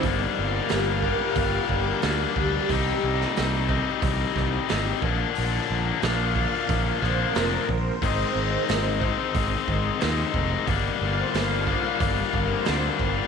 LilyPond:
<<
  \new Staff \with { instrumentName = "String machine" } { \time 4/4 \key g \phrygian \tempo 4 = 90 r8 f''16 bes'16 g'16 f''16 bes'16 g'16 f''16 bes'16 g'8 g'4~ | g'2 r2 | r4 f''4. c''16 bes'8. c''8~ | c''2~ c''8 r4. |
r8 f''16 c''16 f''4. bes'16 c''8 f''8. | }
  \new Staff \with { instrumentName = "Overdriven electric guitar" } { \clef bass \time 4/4 \key g \phrygian <g, d g bes d'>4. <g, d g bes d'>4. <g, d g bes d'>4 | <c g c' ees'>4. <c g c' ees'>4. <c g c' ees'>8 <bes, d f bes d'>8~ | <bes, d f bes d'>4 <bes, d f bes d'>4. <bes, d f bes d'>4 r8 | <aes, ees aes c' ees'>4. <aes, ees aes c' ees'>4. <aes, ees aes c' ees'>4 |
<g, d g bes d'>4. <g, d g bes d'>4. <g, d g bes d'>4 | }
  \new Staff \with { instrumentName = "Fingered electric bass" } { \clef bass \time 4/4 \key g \phrygian g,,8 g,,8 g,,4 g,,8 g,,8 d,8 d,8 | c,8 c,8 c,4 c,8 c,8 aes,,8 bes,,8 | bes,,8 bes,,8 bes,,4 bes,,8 bes,,8 f,,8 bes,,8 | aes,,8 aes,,8 aes,,4 aes,,8 aes,,8 ees,8 f,,8 |
g,,8 g,,8 g,,4 g,,8 g,,8 d,8 g,,8 | }
  \new DrumStaff \with { instrumentName = "Drums" } \drummode { \time 4/4 <hho bd>4 <hho sn>8 bd8 <hho bd>8 bd8 <hho sn>8 bd8 | <hho bd>8. sn16 <hho sn>8 bd8 <hho bd>8 <bd sn>8 <hho sn>8 bd8 | hho4 <hho sn>8 bd8 <hho bd>8 <bd sn>8 <hho sn>8 bd8 | <hho bd>4 <hho sn>8 bd8 <hho bd>8 bd8 <hho sn>8 bd8 |
<hho bd>4 <hho sn>8 bd8 <hho bd>8 bd8 <hho sn>8 bd8 | }
>>